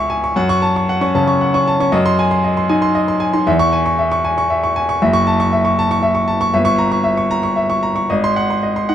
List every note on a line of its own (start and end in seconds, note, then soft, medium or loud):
0.00 0.30 C#2 loud
0.00 0.37 E5 medium
0.00 0.10 G#5 medium
0.00 0.24 C#6 loud
0.10 0.30 G#5 medium
0.24 0.35 C#6 medium
0.36 1.89 F#2 medium
0.36 0.56 F#5 medium
0.49 0.70 C#6 loud
0.62 0.82 A5 medium
0.76 0.96 C#6 medium
0.89 1.09 F#5 medium
1.01 1.22 C#4 medium
1.01 1.22 C#6 medium
1.15 1.35 C#3 medium
1.15 1.35 A5 medium
1.27 1.48 C#6 medium
1.41 1.61 F#5 medium
1.54 1.74 C#4 medium
1.54 1.74 C#6 medium
1.68 1.88 A5 medium
1.80 1.93 C#4 medium
1.80 1.93 C#6 medium
1.92 3.43 F#2 medium
1.92 2.13 D#5 medium
2.06 2.26 C6 loud
2.19 2.40 G#5 medium
2.31 2.52 C6 medium
2.44 2.65 D#5 medium
2.57 2.78 C6 medium
2.69 2.90 D#4 medium
2.69 2.90 G#5 medium
2.82 3.03 C6 medium
2.95 3.16 D#5 medium
3.08 3.29 C6 medium
3.20 3.41 G#5 medium
3.33 3.47 D#4 medium
3.33 3.47 C6 medium
3.47 4.97 E2 medium
3.47 3.68 E5 medium
3.59 3.80 C#6 loud
3.73 3.93 G#5 medium
3.86 4.06 C#6 medium
3.99 4.19 E5 medium
4.12 4.32 C#6 medium
4.25 4.45 G#5 medium
4.38 4.58 C#6 medium
4.50 4.70 E5 medium
4.63 4.83 C#6 medium
4.76 4.96 G#5 medium
4.89 5.01 C#6 medium
5.02 6.50 F#1 loud
5.02 5.22 E5 medium
5.13 5.34 C#6 loud
5.27 5.47 A5 medium
5.40 5.60 C#6 medium
5.52 5.72 E5 medium
5.65 5.85 C#6 medium
5.79 5.98 A5 medium
5.91 6.11 C#6 medium
6.03 6.23 E5 medium
6.15 6.35 C#6 medium
6.28 6.48 A5 medium
6.41 6.53 C#6 medium
6.54 8.05 G1 medium
6.54 6.74 E5 medium
6.65 6.86 C#6 loud
6.78 6.99 A#5 medium
6.92 7.12 C#6 medium
7.04 7.25 E5 medium
7.17 7.38 C#6 medium
7.31 7.51 A#5 medium
7.43 7.64 C#6 medium
7.56 7.77 E5 medium
7.70 7.91 C#6 medium
7.83 8.04 A#5 medium
7.96 8.09 C#6 medium
8.10 8.95 G#1 medium
8.10 8.30 D#5 medium
8.24 8.44 C6 loud
8.36 8.57 F#5 medium
8.50 8.71 C6 medium
8.63 8.84 D#5 medium
8.76 8.95 C6 medium
8.89 8.95 D#4 medium
8.89 8.95 F#5 medium